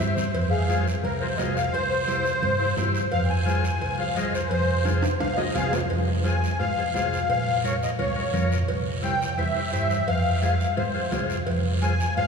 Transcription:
0.00 G2 E4 G4 C5 E5, cowbell, low timbale, short guiro
0.16 C5, low conga, short guiro
0.34 F2, cowbell, long guiro
0.50 G#4 F5
0.69 F4 G#4 C5, cowbell, high conga, short guiro
0.88 short guiro
1.03 C2 A#4, cowbell, high conga, long guiro
1.20 F4 G#4 A#4 C5
1.38 C2 F4 G#4 C5 D#5, cowbell, high conga, low timbale, short guiro
1.56 F5, short guiro
1.73 C2 C5, cowbell, long guiro
2.07 E4 G4 C5, cowbell, high conga, short guiro
2.26 short guiro
2.42 G2, cowbell, high conga, low conga, long guiro
2.59 E4 G4 C5
2.77 G2 E4 G4 C5, cowbell, high conga, low conga, low timbale, short guiro
2.95 short guiro
3.12 F2 F5, cowbell, long guiro
3.25 G5
3.30 G#5
3.45 F4 G#4 C5, cowbell, high conga, short guiro
3.64 short guiro
3.81 C2, cowbell, long guiro
3.98 F4 G#4 C5 F5
4.16 C2 F4 G#4 C5 D#5, cowbell, high conga, short guiro
4.34 C5, short guiro
4.48 F2 B4, cowbell
4.52 C5, long guiro
4.85 F4 G#4 C5, cowbell, high conga, high timbale, short guiro
5.02 high timbale, short guiro
5.20 C2 F5, cowbell, high conga, low conga, high timbale, long guiro
5.37 F4 G#4 A#4 D#5, low timbale
5.54 C2 F4 G#4 C5 F5, cowbell, high conga, low conga, short guiro
5.73 low timbale, short guiro
5.90 F2, cowbell, long guiro
6.24 F4 G#4 C5 G#5, cowbell, high conga, short guiro
6.44 short guiro
6.59 G#2 F4 G#4 C5 F5, cowbell, long guiro
6.78 F4 G#4 C5
6.94 C2 F4 G#4 C5 F5, cowbell, high conga, low timbale, short guiro
7.13 short guiro
7.29 A#1 F5, cowbell, long guiro
7.64 F4 A#4 C#5, cowbell, high conga, short guiro
7.83 D#5, short guiro
7.99 C#2 F4 A#4 C#5, cowbell, high conga, low conga, long guiro
8.16 F4 A#4 C#5
8.33 F2 F4 A#4 C#5, cowbell, high conga, low conga, short guiro
8.52 short guiro
8.68 C2, cowbell, long guiro
9.02 E4 G4 C5 G5, cowbell, high conga, short guiro
9.22 short guiro
9.37 E2 E4 G4 C5 E5, cowbell, high conga, long guiro
9.55 E4 G4 C5
9.72 G2 E4 G4 C5 E5, cowbell, high conga, short guiro
9.90 short guiro
10.08 F2 F5, cowbell, long guiro
10.42 F4 G#4 C5 F5, cowbell, high conga, short guiro
10.60 short guiro
10.76 G#2 F4 G#4 C5, cowbell, high conga, low conga, long guiro
10.94 F4 G#4 C5
11.11 C2 F4 G#4 C5, cowbell, high conga, low conga, low timbale, short guiro
11.30 short guiro
11.47 F2, cowbell, long guiro
11.82 F4 G#4 C5 G#5, cowbell, high conga, short guiro
12.00 short guiro
12.16 G#2 F4 G#4 C5 F5, cowbell, high conga, long guiro

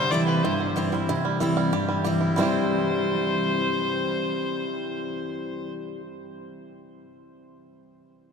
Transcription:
Already playing: C3 G3 C4 G4 C5
0.11 E3 G3 C4 E4 D5
0.27 G4 B4
0.43 G2 E4 C5
0.60 C4
0.76 E3 G3 C4 E4 G4
0.92 G3 C4 E4
1.09 C3 E4
1.25 G3
1.40 E3 G3 C4 E4
1.57 G3
1.73 G2 G4
1.89 G3
2.04 E3 G3 C4 E4 G4
2.21 E4
2.36 C3 E3 G3 C4 E4 C5
2.41 E4 G4

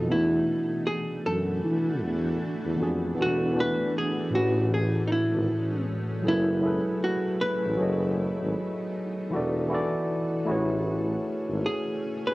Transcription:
Already playing: B2 C4 D#4 F#4 A4
0.07 E2 E3 A3 B3 D4 F#4
0.11 A3 E4 F#4
0.87 G#4
1.26 F#2 A4
1.64 E3
2.03 E2
2.65 E2
2.76 F2 E3 B3 D4
2.81 F#4 G#4
3.15 E3 B3 D4
3.19 E1 F#4 A4
3.53 E3 B3 D4
3.57 A3 F#4 B4
3.98 G#4
4.30 A1 A2 E3 G#3 A3 C#4 F#4
4.35 F#4 G#4 B4
4.74 G#4
5.07 D#4
5.12 E4
5.34 G#1
6.22 F#1 F#3 A3 E4 G#4 B4 G#5
6.27 E4 A4 B4
6.61 F#3 E4 G#4
6.66 A4 B4
7.04 F#4
7.41 B4
7.66 A1
7.77 F#1 F#3 A3 B3 D#4 F#4 G#4 A4
7.81 C#5 D#5
8.42 G#1
9.30 E1 E3 E4 F#4
9.35 A4 D5
9.69 E3 E4 F#4
9.73 A4 D5
10.46 A1 A3 C#4 E4 F#4 G#4
10.50 G#4 B4 C#5
11.50 G#1
11.66 G#4
12.27 B4

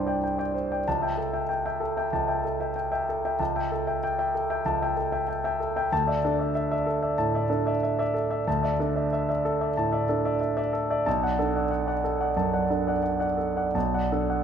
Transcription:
Already playing: C2 G2 D4 C5 D5 G5 C6 D6 G6 C7
0.07 D5 G5
0.24 G5
0.38 D5 G5
0.54 C5
0.72 D5 G5
0.88 C#2 A5
1.02 E5 G5
1.17 A4
1.33 E5 G5
1.49 G5
1.66 E5 G5
1.80 A4
1.97 E5 G5
2.13 C#2 A5
2.28 E5 G5
2.45 A4
2.60 E5 G5
2.76 G5
2.92 E5 G5
3.09 A4
3.25 E5 G5
3.39 C#2 A5
3.56 E5 G5
3.72 A4
3.87 E5 G5
4.04 G5
4.18 E5 G5
4.35 A4
4.50 E5 G5
4.65 C#2 A5
4.82 E5 G5
4.97 A4
5.12 E5 G5
5.29 G5
5.44 E5 G5
5.60 A4
5.76 E5 G5
5.93 D2 A5
6.07 D5 E5
6.24 D4 A4
6.39 D5 E5
6.55 E5
6.71 D5 E5
6.86 A4
7.02 D5 E5
7.18 A2 A5
7.34 D5 E5
7.50 D4 A4
7.66 D5 E5
7.83 E5
7.99 D5 E5
8.14 A4
8.30 D5 E5
8.47 D2 A5
8.63 D5 E5
8.79 D4 A4
8.96 D5 E5
9.13 E5
9.29 D5 E5
9.45 A4
9.61 D5 E5
9.77 A2 A5
9.92 D5 E5
10.09 D4 A4
10.25 D5 E5
10.41 E5
10.57 D5 E5
10.73 A4
10.90 D5 E5
11.06 B1 A5
11.23 D5 F#5
11.39 D4 A4
11.56 D5 F#5
11.71 F#5
11.87 D5 F#5
12.04 A4
12.20 D5 F#5
12.37 F#2 A5
12.53 D5 F#5
12.70 D4 A4
12.87 D5 F#5
13.03 F#5
13.19 D5 F#5
13.38 A4
13.56 D5 F#5
13.75 B1 A5
13.94 D5 F#5
14.12 D4 A4
14.30 D5 F#5

